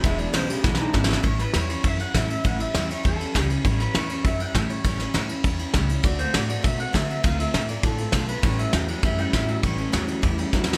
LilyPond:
<<
  \new Staff \with { instrumentName = "Clean electric guitar" } { \time 4/4 \key a \mixolydian \tempo 4 = 200 e''8 d''8 c''8 g'8 e'8 dis'8 d'8 e'8 | cis''8 b'8 cis''8 cis''8 e''8 fis''8 e''8 e''8 | fis''8 e''4 cis''8 a'4. r8 | cis''8 b'8 cis''8 cis''8 e''8 fis''8 e''8 cis''8~ |
cis''2~ cis''8 r4. | d''8 c''8 d''8 d''8 e''8 fis''8 e''8 e''8 | f''8 e''4 d''8 a'4. b'8 | cis''8 e''8 g''8 fis''8 e''8 fis''8 e''8 e''8 |
cis''4. r2 r8 | }
  \new Staff \with { instrumentName = "Steel-string acoustic guitar" } { \time 4/4 \key a \mixolydian <e, b, e gis d' e'>8 <e gis d' e'>8 <e, b, e gis d' e'>8 <e gis d' e'>8 <e gis d' e'>8 <e gis d' e'>8 <e, b, e gis d' e'>8 <e gis d' e'>8 | <a, e g cis' e'>8 <g cis' e'>8 <a, e g cis' e'>8 <g cis' e'>8 <e g cis' e'>8 <g cis' e'>8 <a, e g cis' e'>8 <g cis' e'>8 | <a, e g cis' e'>8 <g cis' e'>8 <a, e g cis' e'>8 <g cis' e'>8 <e g cis' e'>8 <g cis' e'>8 <a, e g cis' e'>8 <g cis' e'>8 | <a, e g cis' e'>8 <g cis' e'>8 <a, e g cis' e'>8 <g cis' e'>8 <e g cis' e'>8 <g cis' e'>8 <a, e g cis' e'>8 <g cis' e'>8 |
<a, e g cis' e'>8 <g cis' e'>8 <a, e g cis' e'>8 <g cis' e'>8 <e g cis' e'>8 <g cis' e'>8 <a, e g cis' e'>8 <g cis' e'>8 | <d a c' fis'>8 <a c' fis'>8 <d a c' fis'>8 <a c' fis'>8 <d a c' fis'>8 <a c' fis'>8 <d a c' fis'>8 <a c' fis'>8 | <d a c' f'>8 <a c' f'>8 <d a c' f'>8 <a c' f'>8 <d a c' f'>8 <a c' f'>8 <d a c' f'>8 <a c' f'>8 | <a, e g cis' e'>8 <g cis' e'>8 <a, e g cis' e'>8 <g cis' e'>8 <e g cis' e'>8 <g cis' e'>8 <a, e g cis' e'>8 <g cis' e'>8 |
<a, e g cis' e'>8 <g cis' e'>8 <a, e g cis' e'>8 <g cis' e'>8 <e g cis' e'>8 <g cis' e'>8 <a, e g cis' e'>8 <g cis' e'>8 | }
  \new Staff \with { instrumentName = "Clean electric guitar" } { \clef bass \time 4/4 \key a \mixolydian <e, b,>8 <e, b,>8 <e, cis>8 <e, cis>8 <e, d>8 <e, d>8 <e, cis>8 <e, cis>8 | r1 | r1 | r1 |
r1 | r1 | r1 | <a, e>8 <a, e>8 <a, fis>8 <a, fis>8 <a, g>8 <a, g>8 <a, fis>8 <a, fis>8 |
<a, e>8 <a, e>8 <a, fis>8 <a, fis>8 <a, g>8 <a, g>8 <a, fis>8 <a, fis>8 | }
  \new Staff \with { instrumentName = "Upright bass" } { \clef bass \time 4/4 \key a \mixolydian e,,4 b,,4 b,,4 gis,,4 | a,,4 e,4 fis,4 a,4 | a,,4 e,4 e,4 cis,4 | a,,4 e,4 fis,4 a,4 |
a,,4 e,4 e,4 cis,4 | d,4 a,4 b,4 d4 | d,4 a,4 a,4 b,,4 | a,,4 e,4 fis,4 a,4 |
a,,4 e,4 e,4 dis,4 | }
  \new DrumStaff \with { instrumentName = "Drums" } \drummode { \time 4/4 <bd cymr>8 cymr8 <cymr sn>8 cymr8 \tuplet 3/2 { <bd sn>8 sn8 r8 <bd sn>8 sn8 sn8 } | <bd cymr>8 <cymr sn>8 <cymr sn>8 cymr8 <bd cymr>8 cymr8 <bd cymr sn>8 cymr8 | <bd cymr>8 cymr8 <cymr sn>8 cymr8 <bd cymr>8 cymr8 <bd cymr sn>8 cymr8 | <bd cymr>8 <cymr sn>8 <cymr sn>8 cymr8 <bd cymr>8 cymr8 <bd cymr sn>8 cymr8 |
<bd cymr>8 <cymr sn>8 <cymr sn>8 cymr8 <bd cymr>8 cymr8 <bd cymr sn>8 cymr8 | <bd cymr>8 cymr8 <cymr sn>8 cymr8 <bd cymr>8 cymr8 <bd cymr sn>8 cymr8 | <bd cymr>8 cymr8 <cymr sn>8 cymr8 <bd cymr>8 cymr8 <bd cymr sn>8 cymr8 | <bd cymr>8 cymr8 <cymr sn>8 cymr8 <bd cymr>8 cymr8 <bd cymr sn>8 cymr8 |
<bd cymr>8 cymr8 <cymr sn>8 cymr8 <bd cymr>8 cymr8 \tuplet 3/2 { <bd sn>8 sn8 sn8 } | }
>>